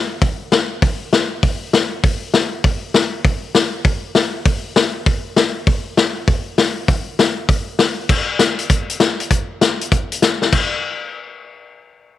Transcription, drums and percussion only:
0.22 kick, open hi-hat
0.52 snare, open hi-hat
0.82 kick, open hi-hat
1.13 snare, open hi-hat
1.43 kick, open hi-hat
1.73 snare, open hi-hat
2.04 kick, open hi-hat
2.34 snare, open hi-hat
2.64 kick, open hi-hat
2.94 snare, open hi-hat
3.25 kick, open hi-hat
3.55 snare, open hi-hat
3.84 kick, open hi-hat
4.15 snare, open hi-hat
4.45 kick, open hi-hat
4.76 snare, open hi-hat
5.06 kick, open hi-hat
5.36 snare, open hi-hat
5.67 kick, open hi-hat
5.97 snare, open hi-hat
6.28 kick, open hi-hat
6.58 snare, open hi-hat
6.88 kick, open hi-hat
7.19 snare, open hi-hat
7.49 kick, open hi-hat
7.79 snare, open hi-hat
8.09 kick, crash
8.39 snare, closed hi-hat
8.59 closed hi-hat
8.70 kick, closed hi-hat
8.90 closed hi-hat
9.00 snare, closed hi-hat
9.20 closed hi-hat
9.31 kick, closed hi-hat
9.61 snare, closed hi-hat
9.81 closed hi-hat
9.92 kick, closed hi-hat
10.12 closed hi-hat
10.22 snare, closed hi-hat
10.42 snare
10.53 kick, crash

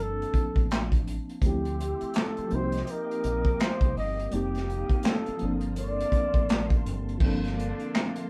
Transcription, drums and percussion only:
0.22 closed hi-hat
0.34 kick, closed hi-hat
0.56 kick, closed hi-hat
0.71 snare, clap, closed hi-hat
0.92 kick, closed hi-hat
1.07 closed hi-hat
1.29 closed hi-hat
1.42 kick, closed hi-hat
1.65 closed hi-hat
1.80 closed hi-hat
2.01 closed hi-hat
2.14 snare, clap, closed hi-hat
2.37 closed hi-hat
2.50 closed hi-hat
2.72 snare, closed hi-hat
2.87 closed hi-hat
3.11 closed hi-hat
3.24 closed hi-hat
3.45 kick, closed hi-hat
3.60 snare, clap, closed hi-hat
3.81 kick, closed hi-hat
3.97 open hi-hat
4.19 closed hi-hat
4.31 closed hi-hat
4.55 snare, closed hi-hat
4.70 closed hi-hat
4.89 kick, closed hi-hat
5.03 snare, clap, closed hi-hat
5.26 closed hi-hat
5.39 closed hi-hat
5.61 closed hi-hat
5.76 closed hi-hat
6.00 closed hi-hat
6.12 kick, closed hi-hat
6.34 kick, closed hi-hat
6.49 snare, clap, closed hi-hat
6.70 kick, closed hi-hat
6.86 closed hi-hat
7.09 closed hi-hat
7.20 kick, crash
7.44 snare, closed hi-hat
7.59 closed hi-hat
7.79 closed hi-hat
7.95 snare, clap
8.15 closed hi-hat

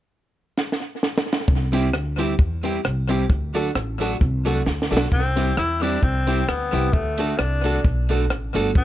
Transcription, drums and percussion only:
0.58 snare
0.72 snare
1.03 snare
1.18 snare
1.33 snare
1.48 kick
1.73 closed hi-hat
1.93 cross-stick
2.19 closed hi-hat
2.39 kick
2.63 closed hi-hat
2.85 cross-stick
3.09 closed hi-hat
3.30 kick
3.55 closed hi-hat
3.75 cross-stick
4.01 closed hi-hat
4.21 kick
4.46 closed hi-hat
4.66 snare
4.82 snare
4.97 snare
5.12 kick
5.37 closed hi-hat
5.57 cross-stick
5.82 closed hi-hat
6.03 kick
6.27 closed hi-hat
6.49 cross-stick
6.73 closed hi-hat
6.93 kick
7.18 closed hi-hat
7.39 cross-stick
7.64 closed hi-hat
7.85 kick
8.09 closed hi-hat
8.30 cross-stick
8.55 closed hi-hat
8.75 kick

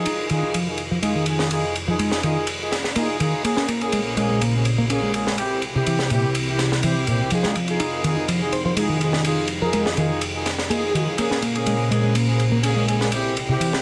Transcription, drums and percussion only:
0.06 ride
0.29 ride
0.54 ride
0.78 ride
1.03 ride
1.26 ride
1.39 snare
1.51 ride
1.76 ride
1.99 ride
2.11 snare
2.23 ride
2.47 ride
2.72 snare, ride
2.84 snare
2.96 ride
3.20 ride
3.45 ride
3.57 snare
3.68 ride
3.81 ride
3.92 ride
4.17 ride
4.41 ride
4.65 ride
4.90 ride
5.14 ride
5.27 snare
5.38 ride
5.62 ride
5.86 ride
5.99 snare
6.10 ride
6.35 ride
6.59 snare, ride
6.72 snare
6.83 ride
7.07 ride
7.30 ride
7.43 snare
7.55 ride
7.68 ride
7.80 ride
8.04 ride
8.28 ride
8.52 ride
8.77 ride
9.01 ride
9.13 snare
9.24 ride
9.48 ride
9.73 ride
9.86 snare
9.97 ride
10.21 ride
10.46 snare, ride
10.58 snare
10.71 ride
10.95 ride
11.18 ride
11.31 snare
11.42 ride
11.55 ride
11.66 ride
11.92 ride
12.15 ride
12.40 ride
12.63 ride
12.88 ride
13.01 snare
13.12 ride
13.37 ride
13.61 ride
13.73 snare

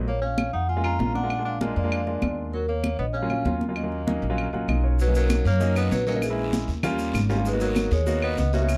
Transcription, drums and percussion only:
0.08 high conga
0.23 high conga
0.38 high conga, claves
0.69 high conga
0.84 high conga, claves
1.00 high conga
1.16 high conga
1.30 high conga, claves
1.46 high conga
1.61 high conga
1.76 high conga
1.92 high conga, claves
2.07 high conga
2.22 high conga, claves
2.53 high conga
2.69 high conga
2.84 high conga, claves
3.14 high conga
3.30 high conga, claves
3.46 high conga
3.61 high conga
3.76 high conga, claves
3.92 high conga
4.08 high conga
4.24 high conga
4.38 high conga, claves
4.54 high conga
4.69 high conga, claves
4.99 high conga, long guiro, maracas
5.15 high conga, maracas
5.30 high conga, short guiro, claves, maracas
5.46 short guiro, maracas
5.60 high conga, long guiro, maracas
5.76 high conga, claves, maracas
5.92 high conga, short guiro, maracas
6.07 short guiro, maracas
6.22 high conga, long guiro, claves, maracas
6.38 high conga
6.53 high conga, short guiro, maracas
6.68 high conga, short guiro, maracas
6.83 high conga, low conga, long guiro, claves, maracas
6.99 high conga, maracas
7.14 high conga, short guiro, claves, maracas
7.29 short guiro, maracas
7.45 high conga, long guiro, maracas
7.60 high conga, maracas
7.76 high conga, short guiro, claves, maracas
7.91 short guiro, maracas
8.06 high conga, long guiro, maracas
8.22 high conga, claves
8.37 high conga, short guiro, maracas
8.53 short guiro, maracas
8.69 high conga, long guiro, claves, maracas

